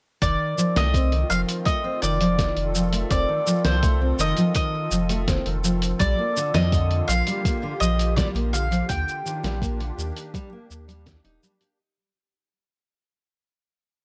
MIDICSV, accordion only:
0, 0, Header, 1, 2, 480
1, 0, Start_track
1, 0, Tempo, 722892
1, 144, Time_signature, 4, 2, 24, 8
1, 9324, End_track
2, 0, Start_track
2, 0, Title_t, "Accordion"
2, 0, Program_c, 0, 21
2, 149, Note_on_c, 0, 51, 69
2, 418, Note_on_c, 0, 60, 67
2, 814, Note_on_c, 0, 65, 63
2, 1754, Note_on_c, 0, 69, 76
2, 3980, Note_on_c, 0, 50, 72
2, 3987, Note_off_c, 0, 51, 0
2, 4335, Note_on_c, 0, 58, 70
2, 4747, Note_off_c, 0, 69, 0
2, 4757, Note_off_c, 0, 60, 0
2, 4855, Note_on_c, 0, 67, 72
2, 5902, Note_off_c, 0, 50, 0
2, 6148, Note_on_c, 0, 62, 78
2, 6675, Note_off_c, 0, 65, 0
2, 7824, Note_off_c, 0, 62, 0
2, 7827, Note_off_c, 0, 58, 0
2, 7828, Note_off_c, 0, 67, 0
2, 9324, End_track
0, 0, End_of_file